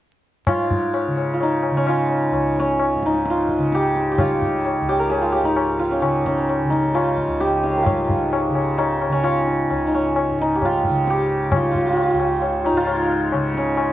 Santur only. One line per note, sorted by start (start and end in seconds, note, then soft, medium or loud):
0.48 1.33 F4 medium
1.34 1.88 F4 medium
1.43 3.05 D#4 medium
1.77 2.59 C#4 medium
1.89 3.30 F4 medium
2.59 5.90 C#4 medium
3.06 5.44 D#4 medium
3.30 4.19 F4 medium
3.74 4.11 G4 medium
4.12 4.88 G4 medium
4.20 5.21 F4 medium
4.89 5.16 G4 medium
4.99 7.77 A#4 medium
5.10 5.38 G#4 medium
5.21 5.79 F4 medium
5.32 7.40 G4 medium
5.45 6.70 D#4 medium
5.79 6.94 F4 medium
5.91 6.26 C#4 medium
6.26 7.80 C#4 medium
6.70 8.77 D#4 medium
6.95 7.82 F4 medium
7.40 7.82 G4 medium
7.57 7.86 G5 soft
7.57 7.89 G#5 soft
7.63 10.04 D#5 soft
7.63 9.86 F5 soft
7.70 9.18 C5 soft
7.70 10.25 C#5 soft
7.77 10.61 G#4 soft
7.77 10.61 A#4 soft
7.83 9.23 F4 medium
7.83 10.55 G4 soft
8.78 9.86 D#4 medium
9.12 9.94 C#4 medium
9.23 10.65 F4 medium
9.87 10.41 D#4 medium
9.95 13.57 C#4 medium
10.41 12.65 D#4 medium
10.55 11.10 G4 medium
10.65 11.55 F4 medium
11.10 13.93 G4 medium
11.56 11.62 F4 medium
11.63 11.71 F4 medium
11.71 11.77 F4 medium
11.77 11.86 F4 medium
11.86 11.93 F4 medium
11.93 12.00 F4 medium
12.01 12.07 F4 medium
12.08 12.77 F4 medium
12.66 13.93 D#4 medium
12.77 13.93 F4 loud
13.57 13.93 C#4 medium